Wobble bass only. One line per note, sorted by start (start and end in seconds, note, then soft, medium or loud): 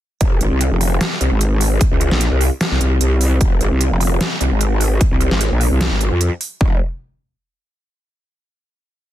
0.21 0.39 F1 medium
0.41 0.50 G#1 medium
0.51 0.70 C2 loud
0.71 0.99 F1 medium
1.21 1.30 C2 loud
1.31 1.79 G#1 loud
1.91 2.10 C#2 loud
2.11 2.30 A#1 loud
2.31 2.50 C2 medium
2.71 2.79 C2 loud
2.81 2.99 C2 loud
3.01 3.39 C2 medium
3.41 3.59 F1 loud
3.61 3.70 G#1 medium
3.71 3.90 C2 loud
3.91 4.19 F1 loud
4.41 4.50 C2 loud
4.51 4.99 G#1 medium
5.11 5.30 C2 medium
5.31 5.50 G#1 loud
5.51 5.70 A#1 loud
5.71 5.90 C2 loud
5.91 6.10 G#1 loud
6.11 6.30 F2 loud
6.61 6.79 F1 loud